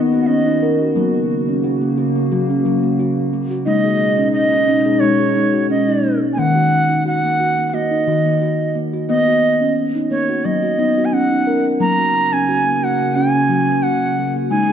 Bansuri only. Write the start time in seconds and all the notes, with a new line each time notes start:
0.21 F#5
0.27 D#5
3.66 D#5
4.32 D#5
5.00 C#5
5.70 D#5
6.33 G#5
6.39 F#5
7.07 F#5
7.70 F#5
7.74 D#5
9.09 D#5
10.11 C#5
10.45 D#5
11.05 G#5
11.13 F#5
11.81 A#5
12.33 G#5
12.84 F#5
13.15 G#5
13.83 F#5
14.51 G#5